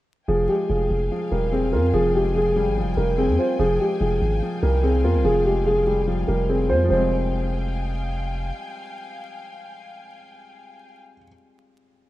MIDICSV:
0, 0, Header, 1, 5, 480
1, 0, Start_track
1, 0, Key_signature, -4, "minor"
1, 0, Tempo, 413793
1, 328, Time_signature, 4, 2, 24, 8
1, 14033, End_track
2, 0, Start_track
2, 0, Title_t, "String section"
2, 0, Program_c, 0, 48
2, 327, Note_on_c, 0, 77, 69
2, 327, Note_on_c, 0, 79, 73
2, 328, Note_on_c, 0, 80, 86
2, 4129, Note_off_c, 0, 77, 0
2, 4168, Note_on_c, 0, 77, 70
2, 7962, Note_off_c, 0, 79, 0
2, 7962, Note_off_c, 0, 80, 0
2, 7970, Note_off_c, 0, 77, 0
2, 8008, Note_on_c, 0, 77, 70
2, 8008, Note_on_c, 0, 79, 86
2, 8008, Note_on_c, 0, 80, 75
2, 12730, Note_off_c, 0, 77, 0
2, 12730, Note_off_c, 0, 79, 0
2, 12730, Note_off_c, 0, 80, 0
2, 14033, End_track
3, 0, Start_track
3, 0, Title_t, "Grand piano"
3, 0, Program_c, 1, 0
3, 328, Note_on_c, 1, 68, 92
3, 509, Note_off_c, 1, 68, 0
3, 563, Note_on_c, 1, 67, 80
3, 746, Note_off_c, 1, 67, 0
3, 805, Note_on_c, 1, 68, 75
3, 1484, Note_off_c, 1, 68, 0
3, 1528, Note_on_c, 1, 70, 82
3, 1709, Note_off_c, 1, 70, 0
3, 1769, Note_on_c, 1, 68, 79
3, 1950, Note_off_c, 1, 68, 0
3, 2004, Note_on_c, 1, 70, 88
3, 2187, Note_off_c, 1, 70, 0
3, 2250, Note_on_c, 1, 68, 105
3, 2431, Note_off_c, 1, 68, 0
3, 2491, Note_on_c, 1, 67, 78
3, 2671, Note_off_c, 1, 67, 0
3, 2736, Note_on_c, 1, 68, 95
3, 3184, Note_off_c, 1, 68, 0
3, 3448, Note_on_c, 1, 70, 85
3, 3629, Note_off_c, 1, 70, 0
3, 3687, Note_on_c, 1, 68, 76
3, 3869, Note_off_c, 1, 68, 0
3, 3930, Note_on_c, 1, 72, 79
3, 4110, Note_off_c, 1, 72, 0
3, 4171, Note_on_c, 1, 68, 106
3, 4351, Note_off_c, 1, 68, 0
3, 4414, Note_on_c, 1, 67, 74
3, 4593, Note_off_c, 1, 67, 0
3, 4649, Note_on_c, 1, 68, 79
3, 5326, Note_off_c, 1, 68, 0
3, 5365, Note_on_c, 1, 70, 84
3, 5548, Note_off_c, 1, 70, 0
3, 5603, Note_on_c, 1, 68, 80
3, 5786, Note_off_c, 1, 68, 0
3, 5853, Note_on_c, 1, 70, 84
3, 6033, Note_off_c, 1, 70, 0
3, 6090, Note_on_c, 1, 68, 101
3, 6271, Note_off_c, 1, 68, 0
3, 6324, Note_on_c, 1, 67, 76
3, 6507, Note_off_c, 1, 67, 0
3, 6564, Note_on_c, 1, 68, 94
3, 7017, Note_off_c, 1, 68, 0
3, 7282, Note_on_c, 1, 70, 84
3, 7466, Note_off_c, 1, 70, 0
3, 7527, Note_on_c, 1, 68, 81
3, 7708, Note_off_c, 1, 68, 0
3, 7767, Note_on_c, 1, 72, 92
3, 7949, Note_off_c, 1, 72, 0
3, 8009, Note_on_c, 1, 72, 81
3, 9402, Note_off_c, 1, 72, 0
3, 14033, End_track
4, 0, Start_track
4, 0, Title_t, "Felt piano"
4, 0, Program_c, 2, 0
4, 329, Note_on_c, 2, 53, 81
4, 529, Control_c, 2, 64, 127
4, 569, Note_on_c, 2, 56, 69
4, 792, Note_off_c, 2, 53, 0
4, 809, Note_on_c, 2, 53, 71
4, 1277, Note_off_c, 2, 53, 0
4, 1294, Note_on_c, 2, 53, 72
4, 1529, Note_on_c, 2, 55, 72
4, 1766, Note_on_c, 2, 60, 95
4, 1769, Note_off_c, 2, 56, 0
4, 2009, Note_on_c, 2, 65, 79
4, 2228, Note_off_c, 2, 53, 0
4, 2245, Note_on_c, 2, 53, 88
4, 2492, Note_on_c, 2, 56, 74
4, 2705, Note_off_c, 2, 53, 0
4, 2722, Note_on_c, 2, 53, 71
4, 2729, Note_off_c, 2, 55, 0
4, 2967, Note_off_c, 2, 60, 0
4, 2970, Note_on_c, 2, 55, 91
4, 3195, Note_off_c, 2, 53, 0
4, 3209, Note_off_c, 2, 65, 0
4, 3212, Note_on_c, 2, 53, 73
4, 3430, Note_off_c, 2, 55, 0
4, 3447, Note_on_c, 2, 55, 68
4, 3686, Note_on_c, 2, 60, 102
4, 3690, Note_off_c, 2, 56, 0
4, 3935, Note_on_c, 2, 65, 79
4, 4149, Note_off_c, 2, 53, 0
4, 4166, Note_on_c, 2, 53, 92
4, 4167, Note_off_c, 2, 60, 0
4, 4168, Note_off_c, 2, 55, 0
4, 4172, Note_off_c, 2, 65, 0
4, 4185, Control_c, 2, 64, 0
4, 4372, Control_c, 2, 64, 127
4, 4409, Note_on_c, 2, 56, 74
4, 4637, Note_off_c, 2, 53, 0
4, 4654, Note_on_c, 2, 53, 72
4, 5114, Note_off_c, 2, 53, 0
4, 5131, Note_on_c, 2, 53, 80
4, 5369, Note_on_c, 2, 55, 77
4, 5609, Note_off_c, 2, 56, 0
4, 5609, Note_on_c, 2, 60, 100
4, 5848, Note_on_c, 2, 65, 85
4, 6066, Note_off_c, 2, 53, 0
4, 6084, Note_on_c, 2, 53, 82
4, 6329, Note_on_c, 2, 56, 71
4, 6554, Note_off_c, 2, 53, 0
4, 6569, Note_off_c, 2, 55, 0
4, 6571, Note_on_c, 2, 53, 75
4, 6806, Note_on_c, 2, 55, 85
4, 6809, Note_off_c, 2, 60, 0
4, 7029, Note_off_c, 2, 53, 0
4, 7046, Note_on_c, 2, 53, 71
4, 7048, Note_off_c, 2, 65, 0
4, 7273, Note_off_c, 2, 55, 0
4, 7290, Note_on_c, 2, 55, 75
4, 7529, Note_off_c, 2, 56, 0
4, 7532, Note_on_c, 2, 60, 86
4, 7760, Note_on_c, 2, 65, 76
4, 7921, Note_off_c, 2, 53, 0
4, 7939, Note_on_c, 2, 53, 81
4, 7968, Note_off_c, 2, 55, 0
4, 7985, Note_on_c, 2, 55, 71
4, 8004, Note_off_c, 2, 65, 0
4, 8010, Note_off_c, 2, 60, 0
4, 8024, Control_c, 2, 64, 0
4, 8032, Note_on_c, 2, 56, 77
4, 8078, Note_on_c, 2, 60, 88
4, 8210, Control_c, 2, 64, 127
4, 12921, Note_off_c, 2, 53, 0
4, 12967, Note_off_c, 2, 55, 0
4, 13014, Note_off_c, 2, 56, 0
4, 13060, Note_off_c, 2, 60, 0
4, 14033, End_track
5, 0, Start_track
5, 0, Title_t, "808-style bass"
5, 0, Program_c, 3, 38
5, 328, Note_on_c, 3, 29, 108
5, 559, Note_off_c, 3, 29, 0
5, 808, Note_on_c, 3, 29, 102
5, 1039, Note_off_c, 3, 29, 0
5, 1047, Note_on_c, 3, 29, 100
5, 1278, Note_off_c, 3, 29, 0
5, 1528, Note_on_c, 3, 28, 103
5, 2008, Note_on_c, 3, 41, 96
5, 2026, Note_off_c, 3, 28, 0
5, 2236, Note_off_c, 3, 41, 0
5, 2248, Note_on_c, 3, 29, 101
5, 3088, Note_on_c, 3, 32, 96
5, 3105, Note_off_c, 3, 29, 0
5, 3268, Note_on_c, 3, 29, 95
5, 3285, Note_off_c, 3, 32, 0
5, 3439, Note_off_c, 3, 29, 0
5, 3448, Note_on_c, 3, 29, 105
5, 3809, Note_on_c, 3, 41, 95
5, 3826, Note_off_c, 3, 29, 0
5, 3923, Note_off_c, 3, 41, 0
5, 4168, Note_on_c, 3, 29, 109
5, 4399, Note_off_c, 3, 29, 0
5, 4648, Note_on_c, 3, 29, 106
5, 4879, Note_off_c, 3, 29, 0
5, 4889, Note_on_c, 3, 32, 101
5, 5119, Note_off_c, 3, 32, 0
5, 5369, Note_on_c, 3, 36, 104
5, 5849, Note_on_c, 3, 41, 97
5, 5866, Note_off_c, 3, 36, 0
5, 5969, Note_on_c, 3, 36, 100
5, 5986, Note_off_c, 3, 41, 0
5, 6082, Note_off_c, 3, 36, 0
5, 6089, Note_on_c, 3, 29, 111
5, 7242, Note_off_c, 3, 29, 0
5, 7289, Note_on_c, 3, 29, 104
5, 7768, Note_on_c, 3, 41, 95
5, 7786, Note_off_c, 3, 29, 0
5, 7996, Note_off_c, 3, 41, 0
5, 8009, Note_on_c, 3, 29, 104
5, 9882, Note_off_c, 3, 29, 0
5, 14033, End_track
0, 0, End_of_file